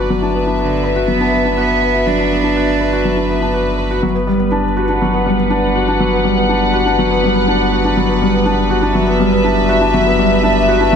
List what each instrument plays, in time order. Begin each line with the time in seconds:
Already playing: sub bass G1, felt piano F#3 B3 D4 F#4 B4, string section B4 D5
0.10 felt piano F#3
0.21 felt piano D4, string section E5
0.34 felt piano B3
0.47 felt piano D4
0.59 cello D3, felt piano F#4
0.83 felt piano B4
0.96 felt piano F#4
1.08 felt piano F#3, cello B3
1.21 felt piano D4
1.32 felt piano B3
1.45 felt piano D4
1.57 cello B3, felt piano F#4
1.82 felt piano B4
1.95 felt piano F#4
2.07 felt piano F#3, cello D4
2.19 felt piano D4
2.31 felt piano B3
2.43 felt piano D4
2.56 felt piano F#4
2.81 felt piano B4
2.93 felt piano F#4
3.05 felt piano F#3
3.17 felt piano D4
3.29 felt piano B3
3.42 felt piano D4
3.54 felt piano F#4
3.78 felt piano B4
3.91 felt piano F#4
4.02 sub bass G1, felt piano F#3
4.15 felt piano B3
4.27 felt piano G3
4.39 felt piano B3
4.52 felt piano D4
4.77 felt piano F#4
4.83 string section F#5
4.89 felt piano D4
5.01 felt piano F#3
5.13 felt piano B3
5.26 felt piano G3
5.39 felt piano B3
5.50 felt piano D4
5.75 felt piano F#4
5.88 felt piano D4
6.00 felt piano F#3
6.13 felt piano B3
6.24 felt piano G3
6.37 felt piano B3
6.49 felt piano D4
6.74 felt piano F#4
6.86 felt piano D4
6.99 felt piano F#3
7.11 felt piano B3
7.23 felt piano G3
7.35 felt piano B3
7.48 felt piano D4
7.72 felt piano F#4
7.85 felt piano D4
7.97 felt piano F#3
8.09 felt piano B3
8.21 felt piano G3
8.33 felt piano B3
8.46 felt piano D4
8.70 felt piano F#4
8.82 felt piano D4
8.91 felt piano F#3, string section E5
9.07 felt piano B3
9.20 felt piano G3
9.32 felt piano B3
9.44 felt piano D4
9.69 felt piano F#4
9.81 felt piano D4
9.94 felt piano F#3
10.06 felt piano B3
10.19 felt piano G3
10.31 felt piano B3
10.43 felt piano D4
10.68 felt piano F#4
10.81 felt piano D4
10.92 felt piano F#3